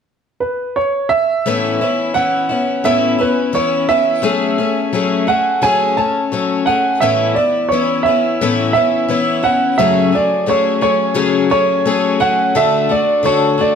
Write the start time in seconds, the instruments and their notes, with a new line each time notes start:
0.40 grand piano B4
0.76 grand piano C#5
1.09 grand piano E5
1.46 twelve-string acoustic guitar A2 E3 B3 C#4 E4
1.81 twelve-string acoustic guitar B3 C#4 E4
2.14 twelve-string acoustic guitar E3 B3 C#4 E4, grand piano F#5
2.49 twelve-string acoustic guitar B3 C#4 E4
2.84 twelve-string acoustic guitar A2 E3 B3 C#4 E4, grand piano E5
3.18 twelve-string acoustic guitar B3 C#4 E4, grand piano B4
3.53 twelve-string acoustic guitar E3 B3 C#4 E4, grand piano C#5
3.89 twelve-string acoustic guitar B3 C#4 E4, grand piano E5
4.22 twelve-string acoustic guitar F#3 A3 C#4 G#4
4.58 twelve-string acoustic guitar A3 C#4 G#4
4.93 twelve-string acoustic guitar F#3 A3 C#4 G#4
5.27 twelve-string acoustic guitar A3 C#4 G#4, grand piano F#5
5.62 twelve-string acoustic guitar F#3 A3 C#4 G#4, grand piano G#5
5.97 twelve-string acoustic guitar A3 C#4, grand piano A5
6.32 twelve-string acoustic guitar F#3 A3 C#4
6.66 twelve-string acoustic guitar A3 C#4 G#4, grand piano F#5
7.00 twelve-string acoustic guitar A2 E3 B3 C#4 E4, grand piano E5
7.35 twelve-string acoustic guitar E4, grand piano D5
7.39 twelve-string acoustic guitar B3
7.69 twelve-string acoustic guitar E3 B3, grand piano C#5
7.73 twelve-string acoustic guitar C#4 E4
8.03 twelve-string acoustic guitar E4, grand piano E5
8.08 twelve-string acoustic guitar B3 C#4
8.41 twelve-string acoustic guitar A2 E3 B3 C#4 E4
8.73 twelve-string acoustic guitar B3 C#4 E4, grand piano E5
9.08 twelve-string acoustic guitar E3 B3 C#4 E4
9.43 twelve-string acoustic guitar B3 C#4 E4, grand piano F#5
9.78 twelve-string acoustic guitar F#2 C#3 F#3 A3 C#4 G#4, grand piano E5
10.12 twelve-string acoustic guitar F#3 A3 G#4, grand piano D5
10.46 twelve-string acoustic guitar F#3 A3 C#4 G#4, grand piano C#5
10.81 twelve-string acoustic guitar F#3 A3 C#4 G#4, grand piano C#5
11.14 twelve-string acoustic guitar F#2 C#3 F#3 A3 C#4 G#4
11.50 twelve-string acoustic guitar F#3 A3 C#4 G#4, grand piano C#5
11.85 twelve-string acoustic guitar F#3 A3 C#4 G#4
12.20 twelve-string acoustic guitar F#3 A3 C#4 G#4, grand piano F#5
12.55 twelve-string acoustic guitar D3 A3 D4 F#4, grand piano E5
12.89 twelve-string acoustic guitar A3 D4 F#4, grand piano D5
13.23 twelve-string acoustic guitar D3 A3 D4 F#4, grand piano C#5
13.58 twelve-string acoustic guitar A3 D4 F#4, grand piano D5